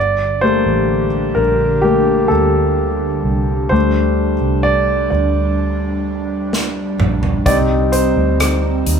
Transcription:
Already playing: G1 D3 G3 D4 G4 D5
0.41 G3 A3 A#3 C5
0.66 A1
1.35 A#1 A#4
1.82 G3 A3 A#3 G4
2.28 D2 A4
3.24 C2
3.69 D2 G3 A3 D4 C5
4.41 C2
4.63 D5
5.10 D2 D5
6.53 snare
6.99 A#1, mid tom
7.23 floor tom
7.46 C2 G3 C4 D#4 D5, kick, closed hi-hat
7.92 C5, closed hi-hat
8.16 D2
8.40 cross-stick, closed hi-hat
8.86 D#2, closed hi-hat

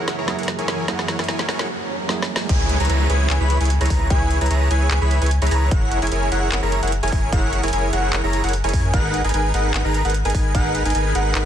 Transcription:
Already playing: F#2 E3 F#3 A#3 E4 G#4 A#4, riser
0.08 E4 G#4 A#4 C#5 F#5, snare, closed hi-hat
0.18 E4 G#4 A#4 C#5 A#5
0.26 F#3 A#3 E4 G#4, snare, closed hi-hat
0.39 E4 G#4 A#4 C#5 F#5, closed hi-hat
0.43 closed hi-hat
0.48 snare, closed hi-hat
0.59 E4 G#4 A#4 C#5 G#5, closed hi-hat
0.68 E4 G#4 A#4 C#5 G#5, snare, closed hi-hat
0.87 F#3 A#3 E4 G#4 A#4 C#5 F#5, snare, closed hi-hat
0.99 snare
1.08 snare, closed hi-hat
1.19 E4 G#4 A#4 C#5 G#5, snare, closed hi-hat
1.24 closed hi-hat
1.29 E4 G#4 A#4 C#5 G#5, snare, closed hi-hat
1.39 snare
1.49 E4 G#4 A#4 C#5 F#5, snare, closed hi-hat
1.59 snare
1.69 swell
2.08 F#3 A#3 E4 G#4, snare
2.22 snare
2.36 snare
2.49 C#2 E4 G#4 B4 C#5 G#5, kick, closed hi-hat, crash, downlifter
2.69 closed hi-hat
2.80 C#2 E4 G#4 B4 C#5 A#5, closed hi-hat
2.85 closed hi-hat
2.90 C#2 E4 G#4 B4 C#5 A#5, closed hi-hat
3.10 C#2 E4 G#4 B4 C#5 G#5, closed hi-hat
3.30 C#2 E4 G#4 B4 C#5 G#5, clap, closed hi-hat
3.40 C#2 E4 G#4 B4 C#5 B5
3.50 closed hi-hat
3.61 C#2 E4 G#4 B4 C#5 G#5, closed hi-hat
3.65 closed hi-hat
3.70 closed hi-hat
3.81 C#2 E4 G#4 B4 C#5 A#5, closed hi-hat
3.86 closed hi-hat
3.90 C#2 E4 G#4 B4 C#5 A#5, kick, open hi-hat
4.10 C#2 E4 G#4 B4 C#5 G#5, kick, closed hi-hat
4.31 closed hi-hat
4.41 C#2 E4 G#4 B4 C#5 A#5, closed hi-hat
4.46 closed hi-hat
4.51 C#2 E4 G#4 B4 C#5 A#5, closed hi-hat
4.71 C#2 E4 G#4 B4 C#5 G#5, closed hi-hat
4.91 C#2 E4 G#4 B4 C#5 G#5, clap, closed hi-hat
5.02 C#2 E4 G#4 B4 C#5 B5
5.11 closed hi-hat
5.22 C#2 E4 G#4 B4 C#5 G#5, closed hi-hat
5.26 closed hi-hat
5.31 closed hi-hat
5.42 C#2 E4 G#4 B4 C#5 A#5, closed hi-hat
5.47 closed hi-hat
5.51 C#2 E4 G#4 B4 C#5 A#5, open hi-hat
5.71 F#1 F#5, kick, closed hi-hat
5.92 closed hi-hat
6.02 F#1 E4 G#4 A#4 C#5 G#5, closed hi-hat
6.07 closed hi-hat
6.12 F#1 E4 G#4 A#4 C#5 G#5, closed hi-hat
6.32 F#1 E4 G#4 A#4 C#5 F#5, closed hi-hat
6.52 F#1 E4 G#4 A#4 C#5 F#5, clap, closed hi-hat
6.63 F#1 E4 G#4 A#4 C#5 A#5
6.72 closed hi-hat
6.83 F#1 E4 G#4 A#4 C#5 F#5, closed hi-hat
6.88 closed hi-hat
6.92 closed hi-hat
7.03 F#1 E4 G#4 A#4 C#5 G#5, closed hi-hat
7.08 closed hi-hat
7.12 F#1 E4 G#4 A#4 C#5 G#5, kick, open hi-hat
7.32 F#1 E4 G#4 A#4 C#5 F#5, kick, closed hi-hat
7.53 closed hi-hat
7.63 F#1 E4 G#4 A#4 C#5 G#5, closed hi-hat
7.68 closed hi-hat
7.73 F#1 E4 G#4 A#4 C#5 G#5, closed hi-hat
7.93 F#1 E4 G#4 A#4 C#5 F#5, closed hi-hat
8.13 F#1 E4 G#4 A#4 C#5 F#5, clap, closed hi-hat
8.24 F#1 E4 G#4 A#4 C#5 A#5
8.33 closed hi-hat
8.44 F#1 E4 G#4 A#4 C#5 F#5, closed hi-hat
8.49 closed hi-hat
8.53 closed hi-hat
8.64 F#1 E4 G#4 A#4 C#5 G#5, closed hi-hat
8.69 closed hi-hat
8.73 F#2 E4 G#4 A#4 C#5 G#5, kick, open hi-hat
8.94 G#1 D#4 G#4 A#4 B4 F#5, kick, closed hi-hat
9.14 closed hi-hat
9.24 G#1 D#4 G#4 A#4 B4 G#5, closed hi-hat
9.29 closed hi-hat
9.34 G#1 D#4 G#4 A#4 B4 G#5, closed hi-hat
9.54 G#1 D#4 G#4 A#4 B4 F#5, closed hi-hat
9.74 G#1 D#4 G#4 A#4 B4 F#5, clap, closed hi-hat
9.85 G#1 D#4 G#4 A#4 B4 A#5
9.94 closed hi-hat
10.05 G#1 D#4 G#4 A#4 B4 F#5, closed hi-hat
10.10 closed hi-hat
10.14 closed hi-hat
10.25 G#1 D#4 G#4 A#4 B4 G#5, closed hi-hat
10.30 closed hi-hat
10.35 G#1 D#4, kick, open hi-hat
10.55 G#1 D#4 G#4 A#4 B4 F#5, kick, closed hi-hat
10.75 closed hi-hat
10.85 G#1 D#4 G#4 A#4 B4 G#5, closed hi-hat
10.90 closed hi-hat
10.95 G#1 D#4 G#4 A#4 B4 G#5, closed hi-hat
11.15 G#1 D#4 G#4 A#4 B4 F#5, closed hi-hat
11.35 G#1 D#4 G#4 A#4 B4 F#5, clap, closed hi-hat

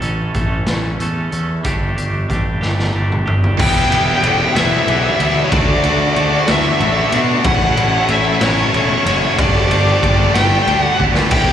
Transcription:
Already playing: A2 E3
0.02 A1 A3 C#4 A4, closed hi-hat
0.34 A1 E3 A3 C#4 A4, kick, closed hi-hat
0.67 A1 A3 C#4 A4, snare, closed hi-hat
1.00 E2 E3 A3 C#4 A4, closed hi-hat
1.31 E2 A3 C#4 A4, closed hi-hat
1.64 G1 G3 A3 D4 G4, kick, closed hi-hat
1.97 G1 A3 D4 G4, closed hi-hat
2.29 A1 G3 A3 D4 G4, kick, closed hi-hat
2.61 G1 A3 D4 G4, snare
2.79 snare
2.93 G1 G3 A3 D4 G4
3.12 mid tom
3.26 G1 A3 D4 G4, mid tom
3.44 floor tom
3.58 E1 E3 G3 B3 E4 G4 E5 G5, kick, crash
3.89 E1 G3 B3 E4, ride
4.23 E1 E3 G3 B3 E4, ride
4.54 E1 G3 B3 E4 E5, snare, ride
4.86 B1 E3 G3 B3 E4, ride
5.19 D2 G3 B3 E4, ride
5.44 C#5
5.51 D2 D3 A3 D4 F#4 D5, kick, ride
5.83 D2 A3 D4 F#4, ride
6.15 D2 D3 A3 D4 F#4, ride
6.48 D2 A3 D4 F#4 E5, snare, ride
6.79 A1 D3 A3 D4 F#4, ride
7.12 B2 A3 D4 F#4, ride
7.44 A1 A2 E3 A3 C#4 E4 C#5 F#5 A5, kick, ride
7.77 A1 A3 C#4 E4, ride
8.08 A1 E3 A3 C#4 E4 E5, ride
8.41 A1 A3 C#4 E4 C#5, snare, ride
8.73 E1 E3 A3 C#4 E4, ride
9.05 F#1 A3 C#4 E4 C#5, ride
9.36 G1 G3 A3 D4 G4 D5, kick, ride
9.40 G4 D5
9.68 G1 A3 D4 G4, ride
10.01 G1 G3 A3 D4 G4, kick, ride
10.34 G1 A3 D4 G4 G5, snare, ride
10.67 D2 G3 A3 D4 G4, ride
10.82 F#5
10.98 D2 A3 D4 G4, kick
11.15 snare
11.30 E1 E3 B3 E4 G4 E5 G5, kick, ride, crash

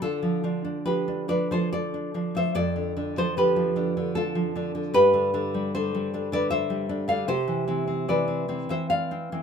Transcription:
0.02 D3 F4 A4
0.23 F3
0.44 F3 D4
0.65 D4
0.86 F3 G4 B4
1.08 D4
1.28 F3 D4 B4 D5
1.51 F3 A4 C5
1.73 A4 D5
1.94 D4
2.14 F3 D4
2.35 F3 C5 E5
2.55 F2 A4 D5
2.76 D3
2.97 D3 D4
3.17 F3 A4 C5
3.37 D3 G4 B4
3.56 F3
3.76 D3 D4
3.97 D3
4.15 F4 A4
4.35 F3
4.56 D3 D4
4.75 D3
4.94 G2 G4 B4
5.13 D3
5.34 D3 D4
5.54 G3
5.75 D3 A4 C5
5.95 G3
6.14 D3 D4
6.32 D3 B4 D5
6.50 C5 E5
6.70 G3
6.89 D3 D4
7.08 D3 D5 F5
7.28 C3 G4 C5
7.48 E3
7.68 E3 C4
7.87 C4
8.08 E3 B4 D5
8.28 C4
8.48 E3 C4
8.69 E3 C5 E5
8.90 D5 F5
9.11 C4
9.32 E3 C4

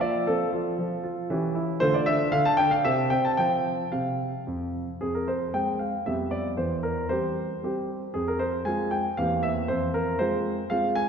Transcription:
Already playing: A#3
0.01 F4 D5
0.27 F3 C4 F4 A4
0.53 F4
0.78 F3
1.04 F4
1.30 E3 C#4 G4
1.55 E4
1.80 D3 A3 F4 C5
1.94 D5
2.06 D4 E5
2.32 D3 F5
2.45 A5
2.57 D4 G5
2.71 F5
2.84 C3 C4 G4 E5
3.10 C4 G5
3.25 A5
3.37 F3 C4 F4 G5
3.92 C3 F5
4.47 F2
5.01 F2 G#4
5.15 A#4
5.28 C5
5.54 G#3 C4 G5
5.79 F5
6.06 F2 G3 B3 G4 E5
6.31 D5
6.57 E2 C5
6.83 A#4
7.09 G3 C4 G4 C5
7.63 G3 C4 G4
8.14 F2 G#4
8.28 A#4
8.39 C5
8.65 G#3 C4 F4 G#5
8.91 G5
9.17 E2 A#3 C4 G4 F5
9.43 E5
9.68 F2 C5
9.94 A#4
10.19 G#3 C4 F4 C5
10.70 G#3 C4 F4 F5
10.95 G#5

